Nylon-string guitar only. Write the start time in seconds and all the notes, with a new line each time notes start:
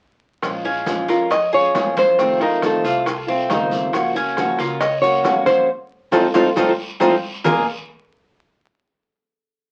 1.10 A#4
1.31 D#5
1.54 C#5
1.99 C5
2.43 A#4
2.66 A4
4.60 A#4
4.81 D#5
5.02 C#5
5.46 C5
6.13 F4 A4 C5
6.35 F4 A4 C5
6.57 F4 A4 C5
7.01 F4 A4 C5
7.46 A#4